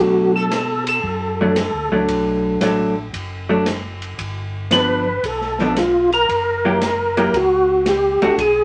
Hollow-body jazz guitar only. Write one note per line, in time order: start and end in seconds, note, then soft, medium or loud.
0.00 0.48 F#3 medium
0.00 0.48 A3 medium
0.00 0.48 D4 medium
1.41 1.55 F#3 medium
1.41 1.56 A3 medium
1.41 1.56 D4 medium
1.92 2.58 F#3 medium
1.92 2.58 A3 medium
1.92 2.59 D4 medium
2.61 2.93 F#3 medium
2.61 2.94 A3 medium
2.61 2.94 D4 medium
3.49 3.65 F#3 medium
3.49 3.65 A3 medium
3.49 3.65 D4 medium
4.72 5.04 F3 soft
4.72 5.04 B3 soft
4.72 5.04 D4 medium
5.60 5.75 F3 soft
5.60 5.75 B3 medium
5.60 5.76 D4 medium
6.65 6.80 F#3 medium
6.65 6.80 A#3 medium
6.65 6.80 E4 medium
6.65 6.80 G4 medium
7.17 7.32 F#3 medium
7.17 7.32 A#3 medium
7.17 7.32 E4 medium
7.17 7.33 G4 medium
8.22 8.37 A3 medium
8.22 8.37 D4 medium
8.22 8.37 F#4 medium